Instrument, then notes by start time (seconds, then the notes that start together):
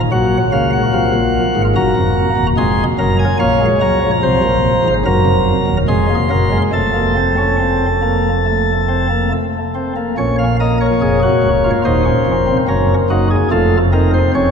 pipe organ
0.12 A#1 A#2 F#3 F#4 F#5
0.52 C#2 C#3 A#3 F5
0.73 F#5
0.93 C2 C3 F4
1.14 A#1 A#2
1.56 G#1 G#2
1.76 F#1 F#2 F#4 A#5
1.96 F1 F2
2.37 D#1 D#2
2.57 F1 F2 G#3 G#4 C6
2.99 F#1 F#2 F#3 A#4 A#5
3.19 G#5
3.39 A#1 A#2 A#3 C#5 F5
3.61 G#3
3.81 C#2 C#3 F#3 A#5
4.02 F3
4.23 C2 C3 C5
4.43 A#1 A#2
4.85 G#1 G#2
5.05 F#1 F#2 F#3 A#4 A#5
5.26 F1 F2
5.67 D#1 D#2
5.88 F1 F2 G#3 G#4 C6
6.10 A#3
6.30 F#1 F#2 F#3 A#4
6.52 G#3
6.73 F1 F2 A3 A4 A5
6.94 A#3
7.16 C4
7.37 C#4
7.59 C4
8.02 A#3
8.46 A3
8.88 C4
9.10 A#3
9.31 A3
9.75 C4
9.96 A#3
10.18 A#1 A#2 C#4 C#5
10.39 F5
10.60 A#3 A#4 D#5
10.81 C#5
11.02 F1 F2 G#4
11.23 F#4
11.43 C#1 C#2
11.64 F4
11.85 D#1 D#2 D#4 C5
12.05 C#4
12.26 F1 F2
12.47 C4
12.68 F#1 F#2 C#4 A#4
13.10 F#1 F#2 D#4 F#4
13.31 G#4
13.51 F1 F2 A3 F4 A4
13.93 C4 D#4 A#4
14.14 C5
14.35 F1 F2 C#4 C#5